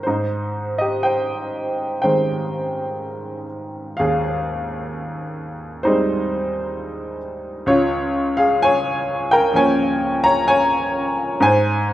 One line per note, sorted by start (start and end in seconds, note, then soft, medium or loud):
0.03 0.77 D#4 soft
0.03 0.76 C5 medium
0.07 3.95 G#2 soft
0.78 1.04 G4 medium
0.78 1.02 D#5 medium
1.03 1.99 C5 medium
1.03 2.00 G5 medium
2.02 5.82 D#3 soft
2.02 5.82 G#3 soft
2.02 5.82 C4 soft
2.02 3.46 C5 soft
2.02 3.45 G5 medium
3.97 7.64 D#2 medium
3.97 5.82 G#4 medium
3.97 5.81 F5 medium
5.83 7.64 G3 medium
5.83 7.64 G#3 soft
5.83 7.64 C4 medium
5.83 7.18 D#4 medium
5.83 7.17 C5 medium
7.66 11.37 C#2 medium
7.66 8.34 F4 medium
7.66 8.39 C#5 medium
8.37 8.60 G#4 medium
8.37 8.59 F5 medium
8.62 9.29 C#5 medium
8.62 9.28 G#5 loud
9.31 9.54 A#4 medium
9.31 9.53 G5 medium
9.53 11.37 F3 soft
9.53 11.37 A#3 soft
9.53 11.37 C#4 medium
9.53 10.21 G#5 medium
9.57 10.21 C#5 medium
10.24 10.46 C#5 medium
10.24 10.48 A#5 loud
10.48 11.39 C#5 medium
10.48 11.38 G#5 loud
11.40 11.93 G#2 medium
11.40 11.93 C5 medium
11.40 11.93 G#5 loud